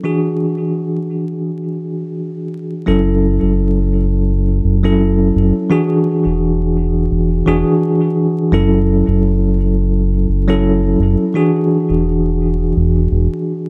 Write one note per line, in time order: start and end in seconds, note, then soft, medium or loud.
0.04 2.83 E3 medium
0.04 2.83 D4 medium
0.04 2.83 F#4 medium
0.04 2.84 G#4 medium
2.86 3.38 F#1 loud
2.86 4.78 F#3 medium
2.86 4.78 C#4 medium
2.86 4.78 E4 medium
2.86 4.79 A4 medium
3.42 4.60 F#1 medium
4.64 5.31 F#1 medium
4.83 5.66 F#3 medium
4.83 5.66 C#4 medium
4.83 5.66 E4 medium
4.83 5.67 A4 medium
5.35 5.52 F#1 medium
5.70 7.42 E3 medium
5.70 7.43 D4 medium
5.70 7.43 F#4 medium
5.70 7.43 G#4 loud
6.25 7.08 E1 medium
7.11 7.42 E1 loud
7.46 7.63 E1 loud
7.46 8.48 E3 medium
7.46 8.49 D4 medium
7.46 8.49 F#4 medium
7.46 8.49 G#4 loud
8.51 9.03 F#1 medium
8.51 10.43 F#3 medium
8.51 10.44 C#4 medium
8.51 10.44 E4 medium
8.51 10.44 A4 medium
9.07 10.26 F#1 medium
10.29 10.96 F#1 medium
10.48 11.30 F#3 medium
10.48 11.31 C#4 medium
10.48 11.31 E4 medium
10.48 11.31 A4 medium
10.99 11.16 F#1 medium
11.34 13.07 E3 medium
11.34 13.07 D4 medium
11.34 13.08 F#4 medium
11.34 13.08 G#4 loud
11.90 12.73 E1 medium
12.76 13.07 E1 loud
13.11 13.28 E1 loud